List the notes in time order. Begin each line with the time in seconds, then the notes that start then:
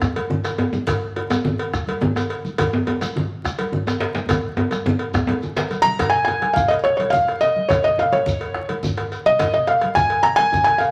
0.02 bombo rim, bombo low, djembe slap, djembe tone, high conga, shekere
0.16 cowbell, high conga
0.30 bombo rim, djembe tone, djembe bass, low conga
0.44 bombo rim, cowbell, djembe slap, high conga, shekere
0.58 cowbell, djembe slap, djembe tone
0.73 djembe slap, djembe tone, high conga, shekere
0.87 bombo rim, bombo low, cowbell, djembe slap, low conga, djembe bass, shekere
1.16 cowbell, djembe tone
1.30 bombo rim, cowbell, djembe slap, high conga, djembe tone, shekere
1.44 djembe tone, low conga, djembe bass
1.59 cowbell
1.73 bombo rim, bombo low, djembe slap, high conga, shekere
1.87 cowbell, high conga
2.01 djembe tone, low conga, djembe bass
2.16 bombo rim, cowbell, djembe slap, djembe tone, high conga, shekere
2.30 cowbell, djembe slap
2.45 djembe slap, high conga, shekere
2.58 bombo rim, bombo low, cowbell, djembe slap, djembe bass, low conga, shekere
2.73 djembe tone
2.87 cowbell, djembe tone
3.01 bombo rim, cowbell, djembe slap, high conga, shekere
3.16 djembe bass, low conga
3.44 bombo rim, bombo low, djembe slap, high conga, shekere
3.59 cowbell, high conga
3.72 bombo rim, djembe tone, djembe bass, low conga
3.87 bombo rim, cowbell, djembe slap, djembe tone, high conga, shekere
4.00 cowbell, djembe slap
4.15 djembe slap, high conga, shekere
4.29 bombo rim, bombo low, cowbell, djembe slap, djembe tone, djembe bass, low conga, shekere
4.44 high conga
4.57 cowbell, djembe tone
4.71 bombo rim, cowbell, djembe slap, high conga, shekere
4.86 djembe slap, djembe tone, high conga, low conga, djembe bass
4.99 bombo rim, cowbell
5.14 bombo rim, bombo low, djembe slap, djembe tone, shekere
5.27 cowbell, djembe tone, high conga
5.42 bombo rim, djembe tone, low conga, shekere
5.56 bombo rim, cowbell, djembe slap, low conga, shekere
5.71 cowbell, high conga, shekere
5.82 A#5, high conga
5.99 bombo rim, bombo low, cowbell, djembe slap, djembe bass, low conga, shekere
6.10 G#5, high conga
6.25 G#5, cowbell, djembe tone
6.42 bombo rim, cowbell, djembe slap, high conga
6.53 F5, bombo low, low conga, djembe bass, shekere
6.68 D#5, cowbell
6.84 C#5, bombo rim, djembe slap
6.97 C#5, cowbell, high conga
7.10 F5, bombo low, djembe tone, low conga, shekere
7.27 bombo rim, cowbell, djembe slap
7.41 D#5, cowbell, shekere
7.56 high conga
7.69 C#5, bombo rim, bombo low, cowbell, djembe slap, djembe bass, low conga, shekere
7.84 D#5, high conga
7.98 F5, cowbell, djembe tone
8.12 C#5, bombo rim, cowbell, djembe slap, high conga
8.26 bombo low, low conga, djembe bass, shekere
8.41 cowbell
8.54 bombo rim, djembe slap
8.69 cowbell, high conga
8.83 bombo low, djembe tone, low conga, djembe bass, shekere
8.97 bombo rim, cowbell, djembe slap
9.12 cowbell, shekere
9.26 D#5, high conga
9.39 bombo rim, bombo low, cowbell, djembe slap, low conga, djembe bass, shekere
9.54 D#5, high conga
9.67 F5, cowbell
9.81 bombo rim, cowbell, djembe slap, high conga
9.95 G#5, bombo low, djembe bass, low conga, shekere
10.10 cowbell
10.23 A#5, bombo rim, djembe slap
10.36 G#5, cowbell, high conga
10.52 bombo low, djembe tone, djembe bass, low conga, shekere
10.64 G#5, bombo rim, cowbell, djembe slap
10.78 F5, cowbell, shekere